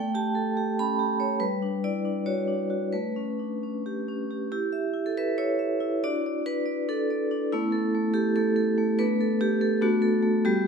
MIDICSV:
0, 0, Header, 1, 2, 480
1, 0, Start_track
1, 0, Tempo, 424929
1, 1589, Time_signature, 7, 3, 24, 8
1, 2561, Tempo, 452489
1, 4961, Tempo, 431344
1, 6401, Tempo, 421348
1, 11924, End_track
2, 0, Start_track
2, 0, Title_t, "Vibraphone"
2, 0, Program_c, 0, 11
2, 0, Note_on_c, 0, 57, 66
2, 0, Note_on_c, 0, 79, 92
2, 96, Control_c, 0, 64, 127
2, 159, Note_off_c, 0, 79, 0
2, 164, Note_on_c, 0, 67, 53
2, 171, Note_on_c, 0, 81, 89
2, 396, Note_on_c, 0, 69, 50
2, 541, Note_off_c, 0, 67, 0
2, 634, Note_off_c, 0, 69, 0
2, 642, Note_on_c, 0, 67, 58
2, 877, Note_off_c, 0, 81, 0
2, 895, Note_on_c, 0, 61, 50
2, 896, Note_on_c, 0, 83, 89
2, 1019, Note_off_c, 0, 67, 0
2, 1119, Note_on_c, 0, 67, 51
2, 1265, Note_off_c, 0, 61, 0
2, 1353, Note_on_c, 0, 73, 57
2, 1497, Note_off_c, 0, 67, 0
2, 1542, Note_off_c, 0, 57, 0
2, 1580, Note_on_c, 0, 71, 84
2, 1582, Note_on_c, 0, 55, 61
2, 1591, Note_off_c, 0, 73, 0
2, 1601, Note_off_c, 0, 83, 0
2, 1610, Control_c, 0, 64, 0
2, 1779, Control_c, 0, 64, 127
2, 1837, Note_on_c, 0, 62, 47
2, 2068, Note_off_c, 0, 71, 0
2, 2080, Note_on_c, 0, 64, 43
2, 2080, Note_on_c, 0, 74, 81
2, 2221, Note_off_c, 0, 62, 0
2, 2316, Note_on_c, 0, 62, 45
2, 2319, Note_off_c, 0, 64, 0
2, 2553, Note_on_c, 0, 73, 79
2, 2556, Note_on_c, 0, 66, 52
2, 2565, Note_off_c, 0, 74, 0
2, 2702, Note_off_c, 0, 62, 0
2, 2782, Note_on_c, 0, 62, 42
2, 2935, Note_off_c, 0, 66, 0
2, 3022, Note_on_c, 0, 66, 47
2, 3170, Note_off_c, 0, 62, 0
2, 3228, Note_off_c, 0, 55, 0
2, 3259, Note_on_c, 0, 71, 64
2, 3268, Note_on_c, 0, 57, 52
2, 3269, Note_off_c, 0, 66, 0
2, 3270, Note_off_c, 0, 73, 0
2, 3295, Control_c, 0, 64, 0
2, 3468, Control_c, 0, 64, 127
2, 3512, Note_on_c, 0, 61, 46
2, 3755, Note_on_c, 0, 62, 39
2, 3906, Note_off_c, 0, 61, 0
2, 4003, Note_off_c, 0, 62, 0
2, 4010, Note_on_c, 0, 61, 41
2, 4243, Note_off_c, 0, 71, 0
2, 4250, Note_on_c, 0, 67, 49
2, 4397, Note_off_c, 0, 61, 0
2, 4487, Note_on_c, 0, 61, 43
2, 4634, Note_off_c, 0, 67, 0
2, 4724, Note_on_c, 0, 67, 46
2, 4869, Note_off_c, 0, 61, 0
2, 4917, Note_off_c, 0, 57, 0
2, 4937, Note_off_c, 0, 67, 0
2, 4950, Note_on_c, 0, 67, 77
2, 4952, Note_on_c, 0, 64, 58
2, 4980, Control_c, 0, 64, 0
2, 5148, Control_c, 0, 64, 127
2, 5179, Note_on_c, 0, 76, 53
2, 5401, Note_off_c, 0, 64, 0
2, 5414, Note_on_c, 0, 64, 53
2, 5551, Note_on_c, 0, 69, 58
2, 5558, Note_off_c, 0, 67, 0
2, 5669, Note_off_c, 0, 76, 0
2, 5678, Note_off_c, 0, 69, 0
2, 5678, Note_on_c, 0, 71, 87
2, 5682, Note_on_c, 0, 76, 53
2, 5898, Note_off_c, 0, 64, 0
2, 5908, Note_on_c, 0, 73, 82
2, 5911, Note_on_c, 0, 64, 53
2, 5920, Note_off_c, 0, 71, 0
2, 6128, Note_off_c, 0, 76, 0
2, 6141, Note_on_c, 0, 76, 50
2, 6365, Note_off_c, 0, 64, 0
2, 6379, Note_on_c, 0, 64, 61
2, 6623, Note_off_c, 0, 76, 0
2, 6629, Note_off_c, 0, 64, 0
2, 6641, Note_off_c, 0, 73, 0
2, 6642, Note_on_c, 0, 64, 41
2, 6642, Note_on_c, 0, 66, 45
2, 6644, Note_on_c, 0, 74, 90
2, 6648, Note_on_c, 0, 62, 61
2, 6668, Control_c, 0, 64, 0
2, 6842, Control_c, 0, 64, 127
2, 6887, Note_off_c, 0, 74, 0
2, 6900, Note_on_c, 0, 74, 59
2, 7111, Note_off_c, 0, 62, 0
2, 7124, Note_on_c, 0, 62, 53
2, 7127, Note_on_c, 0, 71, 96
2, 7336, Note_off_c, 0, 74, 0
2, 7350, Note_on_c, 0, 74, 60
2, 7598, Note_off_c, 0, 62, 0
2, 7611, Note_off_c, 0, 71, 0
2, 7612, Note_on_c, 0, 62, 55
2, 7613, Note_on_c, 0, 69, 77
2, 7847, Note_off_c, 0, 74, 0
2, 7860, Note_on_c, 0, 74, 53
2, 8083, Note_off_c, 0, 62, 0
2, 8097, Note_on_c, 0, 62, 62
2, 8294, Note_off_c, 0, 64, 0
2, 8294, Note_off_c, 0, 66, 0
2, 8330, Note_off_c, 0, 74, 0
2, 8334, Note_off_c, 0, 62, 0
2, 8340, Note_on_c, 0, 64, 85
2, 8341, Note_on_c, 0, 61, 43
2, 8342, Note_on_c, 0, 59, 48
2, 8343, Note_off_c, 0, 69, 0
2, 8345, Note_on_c, 0, 57, 65
2, 8364, Control_c, 0, 64, 0
2, 8527, Control_c, 0, 64, 127
2, 8563, Note_on_c, 0, 69, 61
2, 8806, Note_off_c, 0, 57, 0
2, 8819, Note_on_c, 0, 57, 64
2, 9021, Note_off_c, 0, 69, 0
2, 9035, Note_on_c, 0, 69, 60
2, 9037, Note_on_c, 0, 67, 93
2, 9056, Note_off_c, 0, 64, 0
2, 9274, Note_off_c, 0, 69, 0
2, 9282, Note_off_c, 0, 57, 0
2, 9286, Note_off_c, 0, 67, 0
2, 9287, Note_on_c, 0, 69, 83
2, 9296, Note_on_c, 0, 57, 60
2, 9505, Note_off_c, 0, 69, 0
2, 9518, Note_on_c, 0, 69, 61
2, 9752, Note_off_c, 0, 57, 0
2, 9766, Note_on_c, 0, 57, 67
2, 9967, Note_off_c, 0, 59, 0
2, 9967, Note_off_c, 0, 61, 0
2, 9990, Note_off_c, 0, 69, 0
2, 9992, Note_off_c, 0, 57, 0
2, 10004, Note_on_c, 0, 71, 98
2, 10006, Note_on_c, 0, 57, 72
2, 10006, Note_on_c, 0, 59, 49
2, 10007, Note_on_c, 0, 62, 52
2, 10035, Control_c, 0, 64, 0
2, 10205, Control_c, 0, 64, 127
2, 10253, Note_on_c, 0, 69, 66
2, 10473, Note_off_c, 0, 57, 0
2, 10483, Note_on_c, 0, 67, 102
2, 10487, Note_on_c, 0, 57, 59
2, 10489, Note_off_c, 0, 71, 0
2, 10704, Note_off_c, 0, 69, 0
2, 10718, Note_on_c, 0, 69, 72
2, 10922, Note_off_c, 0, 59, 0
2, 10923, Note_off_c, 0, 62, 0
2, 10941, Note_off_c, 0, 57, 0
2, 10947, Note_on_c, 0, 62, 52
2, 10949, Note_on_c, 0, 59, 56
2, 10954, Note_on_c, 0, 57, 81
2, 10954, Note_on_c, 0, 66, 99
2, 10956, Note_off_c, 0, 69, 0
2, 10966, Note_off_c, 0, 67, 0
2, 10989, Control_c, 0, 64, 0
2, 11170, Control_c, 0, 64, 127
2, 11180, Note_on_c, 0, 69, 66
2, 11402, Note_off_c, 0, 57, 0
2, 11416, Note_on_c, 0, 57, 72
2, 11629, Note_off_c, 0, 62, 0
2, 11631, Note_off_c, 0, 59, 0
2, 11658, Note_off_c, 0, 66, 0
2, 11658, Note_off_c, 0, 69, 0
2, 11663, Note_off_c, 0, 57, 0
2, 11670, Note_on_c, 0, 67, 96
2, 11672, Note_on_c, 0, 66, 58
2, 11673, Note_on_c, 0, 59, 50
2, 11677, Note_on_c, 0, 55, 81
2, 11708, Control_c, 0, 64, 0
2, 11863, Control_c, 0, 64, 127
2, 11899, Note_off_c, 0, 67, 0
2, 11924, Note_off_c, 0, 55, 0
2, 11924, Note_off_c, 0, 59, 0
2, 11924, Note_off_c, 0, 66, 0
2, 11924, End_track
0, 0, End_of_file